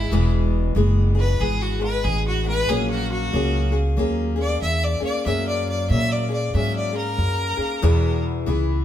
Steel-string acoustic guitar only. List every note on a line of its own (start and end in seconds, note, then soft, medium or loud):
0.00 0.11 E3 soft
0.00 0.11 G#3 soft
0.00 0.12 B3 soft
0.00 0.12 G#4 medium
0.11 0.76 E2 medium
0.11 0.76 B2 medium
0.11 0.74 E3 medium
0.11 0.76 G#3 medium
0.11 0.75 B3 medium
0.11 0.77 G#4 medium
0.75 1.14 E3 medium
0.75 1.15 G#3 medium
0.75 1.15 B3 medium
0.75 1.14 G#4 medium
1.15 1.38 E3 soft
1.15 1.39 G#3 soft
1.15 1.40 B3 soft
1.15 1.40 G#4 medium
1.39 1.79 E3 medium
1.39 1.79 G#3 medium
1.39 1.79 B3 medium
1.39 1.78 G#4 medium
1.79 2.45 E3 soft
1.79 2.45 G#3 soft
1.79 2.43 B3 soft
1.79 2.43 G#4 soft
2.44 2.68 E3 soft
2.44 2.69 G#3 soft
2.44 2.69 B3 medium
2.44 2.69 G#4 medium
2.69 3.32 F#3 medium
2.69 3.32 A#3 medium
2.69 3.33 C#4 medium
2.69 3.35 G#4 medium
3.33 3.72 F#3 medium
3.33 3.72 A#3 medium
3.33 3.72 C#4 medium
3.33 3.71 G#4 medium
3.72 3.97 A#3 soft
3.72 3.97 C#4 soft
3.72 3.97 G#4 medium
3.97 4.36 F#3 medium
3.97 4.37 A#3 medium
3.97 4.36 C#4 medium
3.97 4.35 G#4 medium
4.36 5.01 A#3 soft
4.36 5.00 C#4 soft
4.36 5.00 G#4 medium
5.00 5.25 A#3 soft
5.00 5.26 C#4 medium
5.00 5.26 G#4 medium
5.26 5.88 F#3 medium
5.26 5.89 A#3 medium
5.26 5.90 C#4 medium
5.26 5.92 G#4 medium
5.90 6.29 F#3 medium
5.90 6.29 A#3 medium
5.90 6.29 C#4 medium
5.90 6.28 G#4 medium
6.29 6.54 A#3 soft
6.29 6.54 C#4 soft
6.29 6.54 G#4 medium
6.54 6.93 F#3 medium
6.54 6.93 A#3 medium
6.54 6.92 C#4 medium
6.54 6.91 G#4 medium
6.93 7.58 A#3 soft
6.93 7.57 C#4 soft
6.93 7.57 G#4 medium
7.57 7.82 A#3 soft
7.57 7.83 C#4 soft
7.57 7.83 G#4 medium
7.82 8.47 E2 loud
7.82 8.47 B2 loud
7.82 8.45 E3 medium
7.82 8.46 B3 loud
7.82 8.47 E4 loud
7.82 8.48 G#4 loud
8.46 8.85 E3 medium
8.46 8.85 B3 medium
8.46 8.85 E4 medium
8.46 8.84 G#4 medium